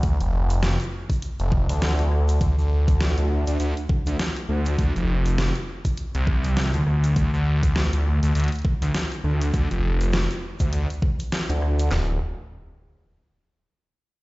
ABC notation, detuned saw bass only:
X:1
M:4/4
L:1/16
Q:"Swing 16ths" 1/4=101
K:Dm
V:1 name="Detuned saw bass" clef=bass
D,, F,,,4 z4 F,,,2 D,,4- D,, | D,, D,,4 D,,2 D,, D,, z2 D,, z2 D,,2 | D,, F,,,4 z4 C,,4 D,, D,,2 | D,, D,,4 D,,2 D,, D,, z2 D,, z2 D,,2 |
D,, F,,,4 z2 D,,2 z4 D,,3 | D,,,2 z12 z2 |]